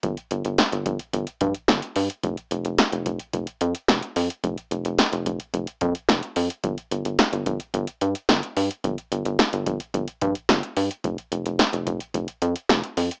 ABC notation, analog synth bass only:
X:1
M:4/4
L:1/16
Q:1/4=109
K:Fmix
V:1 name="Analog synth bass" clef=bass
G,,, z G,,, G,,, z G,,, G,,, z G,,, z G,, z G,,, z G,, z | F,,, z F,,, F,,, z F,,, F,,, z F,,, z F,, z F,,, z F,, z | F,,, z F,,, F,,, z F,,, F,,, z F,,, z F,, z F,,, z F,, z | G,,, z G,,, G,,, z G,,, G,,, z G,,, z G,, z G,,, z G,, z |
G,,, z G,,, G,,, z G,,, G,,, z G,,, z G,, z G,,, z G,, z | F,,, z F,,, F,,, z F,,, F,,, z F,,, z F,, z F,,, z F,, z |]